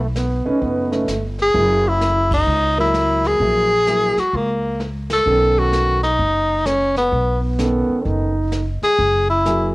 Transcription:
0.00 0.42 B1 medium
0.15 0.48 B3 medium
0.15 snare medium
0.15 hi-hat pedal soft
0.45 0.89 A3 medium
0.45 0.89 C#4 medium
0.45 0.64 C#4 medium
0.45 0.89 D#4 medium
0.45 0.89 B4 medium
0.45 muted upright bass stroke soft
0.62 1.05 F#1 medium
0.62 0.94 B3 medium
0.62 brush sweep soft
0.62 kick soft
0.91 1.06 A3 medium
0.91 1.24 A3 medium
0.91 1.07 C#4 medium
0.91 1.07 D#4 medium
0.91 1.07 B4 medium
0.91 snare soft
1.08 1.51 G1 medium
1.08 snare medium
1.08 hi-hat pedal medium
1.39 1.90 G#4 medium
1.39 snare soft
1.54 2.43 F#1 medium
1.54 1.82 F#3 medium
1.54 1.82 A#3 medium
1.54 1.82 E4 medium
1.54 1.82 G#4 medium
1.54 brush sweep soft
1.54 kick soft
1.88 2.33 E4 medium
2.01 snare medium
2.01 hi-hat pedal medium
2.31 2.76 D#4 medium
2.31 kick medium
2.31 ride medium
2.47 3.36 C#2 medium
2.47 brush sweep soft
2.77 3.37 F#3 medium
2.77 3.37 A#3 medium
2.77 3.37 E4 medium
2.77 3.28 E4 medium
2.77 3.37 A#4 medium
2.94 snare medium
2.94 hi-hat pedal soft
3.24 4.21 G#4 loud
3.24 snare soft
3.40 4.13 A#1 medium
3.40 3.68 F#3 medium
3.40 3.68 A#3 medium
3.40 3.68 E4 medium
3.40 3.69 G#4 medium
3.40 brush sweep soft
3.40 kick soft
3.87 4.14 F#3 medium
3.87 4.14 A#3 medium
3.87 4.14 E4 medium
3.87 4.14 G#4 medium
3.87 snare medium
3.87 hi-hat pedal medium
4.17 4.37 F#4 medium
4.17 muted upright bass stroke soft
4.17 snare soft
4.33 5.22 C#2 medium
4.33 4.81 A#3 medium
4.33 brush sweep soft
4.33 kick soft
4.80 snare medium
4.80 hi-hat pedal soft
5.10 5.60 A4 medium
5.10 snare medium
5.10 ride medium
5.26 6.15 B1 medium
5.26 5.97 D#3 medium
5.26 5.97 B3 medium
5.26 5.97 C#4 medium
5.26 5.98 A4 medium
5.26 brush sweep soft
5.59 6.03 F#4 medium
5.73 snare soft
5.73 hi-hat pedal medium
6.03 6.68 D#4 medium
6.03 snare soft
6.19 7.08 F#1 medium
6.19 brush sweep soft
6.19 kick soft
6.66 6.96 C#4 medium
6.66 snare soft
6.66 hi-hat pedal medium
6.96 7.40 B3 medium
6.96 snare soft
7.12 7.85 B1 medium
7.12 brush sweep soft
7.12 kick soft
7.41 8.07 B3 medium
7.58 8.29 D#3 medium
7.58 8.29 B3 medium
7.58 8.30 C#4 medium
7.58 8.30 A4 medium
7.58 snare medium
7.58 hi-hat pedal medium
7.88 muted upright bass stroke soft
8.05 8.78 F#1 medium
8.05 8.67 D#4 loud
8.05 brush sweep soft
8.05 kick soft
8.52 snare soft
8.52 hi-hat pedal soft
8.82 9.26 G#4 medium
8.82 muted upright bass stroke soft
8.82 snare soft
8.99 9.75 F#1 medium
8.99 brush sweep soft
8.99 kick soft
9.30 9.72 E4 medium
9.45 9.72 F#3 medium
9.45 9.72 A#3 medium
9.45 9.73 E4 medium
9.45 9.73 G#4 medium
9.45 snare medium
9.45 hi-hat pedal medium

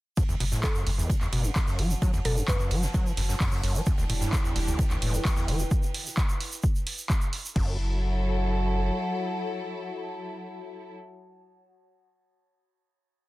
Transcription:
0.17 0.24 F#2 medium
0.17 3.87 F#4 medium
0.17 kick loud
0.17 ride medium
0.17 shaker medium
0.29 0.37 F#1 medium
0.29 0.35 E2 loud
0.29 ride soft
0.29 shaker soft
0.40 0.56 F#1 medium
0.40 0.44 B2 loud
0.40 open hi-hat medium
0.40 ride medium
0.52 0.65 A2 loud
0.52 snare soft
0.52 shaker medium
0.58 4.60 A5 medium
0.63 0.67 F#2 medium
0.63 0.76 A4 medium
0.63 4.60 C#5 medium
0.63 kick loud
0.63 snare loud
0.63 clap loud
0.63 ride medium
0.63 shaker medium
0.74 0.85 F#2 medium
0.74 3.87 F#5 medium
0.74 shaker soft
0.86 1.03 F#1 medium
0.86 0.90 E2 medium
0.86 open hi-hat medium
0.86 ride medium
0.98 1.11 E2 medium
0.98 shaker medium
1.10 1.16 E3 medium
1.10 kick loud
1.10 ride medium
1.10 shaker medium
1.21 1.28 E2 loud
1.21 clap soft
1.21 ride soft
1.21 shaker soft
1.32 1.49 F#1 medium
1.32 1.46 B2 loud
1.32 open hi-hat loud
1.32 ride medium
1.44 1.51 F#2 medium
1.44 shaker medium
1.55 1.60 F#2 medium
1.55 kick loud
1.55 snare loud
1.55 clap loud
1.55 ride medium
1.55 shaker medium
1.67 1.80 F#2 medium
1.67 snare medium
1.67 shaker soft
1.79 1.95 F#1 medium
1.79 1.92 F#3 loud
1.79 open hi-hat medium
1.79 ride medium
1.90 1.94 A2 medium
1.90 shaker medium
2.02 2.11 F#3 medium
2.02 kick loud
2.02 ride medium
2.02 shaker medium
2.13 2.21 F#1 medium
2.13 2.20 E2 medium
2.13 ride soft
2.13 shaker soft
2.25 2.41 F#1 medium
2.25 2.38 B2 loud
2.25 2.46 A4 medium
2.25 open hi-hat loud
2.25 ride medium
2.37 2.43 F#2 medium
2.37 shaker medium
2.48 2.58 F#2 loud
2.48 3.13 B4 medium
2.48 kick loud
2.48 snare loud
2.48 clap loud
2.48 ride medium
2.48 shaker medium
2.60 2.73 F#2 medium
2.60 shaker soft
2.71 2.87 F#1 medium
2.71 2.84 F#3 medium
2.71 open hi-hat medium
2.71 ride medium
2.83 2.87 A2 medium
2.83 snare soft
2.83 shaker medium
2.94 3.07 F#3 medium
2.94 kick loud
2.94 ride medium
2.94 shaker medium
3.06 3.12 E3 medium
3.06 shaker soft
3.17 3.33 F#1 medium
3.17 3.21 F#2 medium
3.17 snare soft
3.17 open hi-hat loud
3.17 ride medium
3.29 3.35 F#2 medium
3.29 snare soft
3.29 shaker medium
3.40 3.50 F#2 loud
3.40 kick loud
3.40 snare loud
3.40 clap loud
3.40 open hi-hat medium
3.40 shaker medium
3.52 3.61 F#2 medium
3.52 snare soft
3.52 shaker soft
3.63 3.79 F#1 medium
3.63 3.77 F#2 medium
3.63 open hi-hat medium
3.63 ride medium
3.75 3.81 F#3 loud
3.75 shaker medium
3.86 3.93 E2 medium
3.86 5.69 E3 medium
3.86 5.69 D4 medium
3.86 5.71 E4 medium
3.86 5.69 G4 medium
3.86 kick loud
3.86 ride medium
3.86 shaker medium
3.98 4.06 E1 medium
3.98 4.04 D2 loud
3.98 ride soft
3.98 shaker soft
4.09 4.26 E1 medium
4.09 4.13 A2 loud
4.09 open hi-hat loud
4.09 ride medium
4.21 4.34 G2 loud
4.21 snare soft
4.21 shaker medium
4.32 4.36 E2 medium
4.32 kick loud
4.32 snare loud
4.32 clap loud
4.32 ride medium
4.32 shaker medium
4.44 4.54 E2 medium
4.44 shaker soft
4.56 4.72 E1 medium
4.56 4.60 D2 medium
4.56 5.71 B4 medium
4.56 open hi-hat loud
4.56 ride medium
4.67 4.80 D2 loud
4.67 5.71 G5 medium
4.67 shaker medium
4.79 4.85 D3 medium
4.79 kick loud
4.79 ride medium
4.79 shaker medium
4.90 4.97 D2 loud
4.90 clap soft
4.90 ride soft
4.90 shaker soft
5.02 5.18 E1 medium
5.02 5.15 A2 loud
5.02 open hi-hat loud
5.02 ride medium
5.14 5.20 E2 medium
5.14 shaker medium
5.25 5.29 E2 medium
5.25 kick loud
5.25 snare loud
5.25 clap loud
5.25 ride medium
5.25 shaker medium
5.36 5.50 E2 medium
5.36 snare medium
5.36 shaker soft
5.48 5.64 E1 medium
5.48 5.61 E3 loud
5.48 open hi-hat medium
5.48 ride medium
5.59 5.63 G2 medium
5.59 shaker medium
5.71 kick loud
5.71 shaker medium
5.83 shaker soft
5.94 open hi-hat loud
6.06 shaker medium
6.17 kick loud
6.17 clap loud
6.17 shaker medium
6.29 shaker soft
6.41 open hi-hat medium
6.52 shaker medium
6.63 kick loud
6.63 shaker medium
6.76 shaker soft
6.87 open hi-hat loud
6.98 shaker medium
7.10 kick loud
7.10 clap loud
7.10 shaker medium
7.21 shaker soft
7.33 open hi-hat medium
7.45 shaker medium
7.56 8.90 F#1 medium
7.56 7.77 F#2 medium
7.56 10.93 F#3 medium
7.56 10.93 E4 medium
7.56 10.93 F#4 medium
7.56 10.93 A4 medium
7.56 kick loud
7.56 crash medium
7.63 11.00 C#5 medium
7.69 11.06 F#5 medium
7.76 11.13 A5 medium

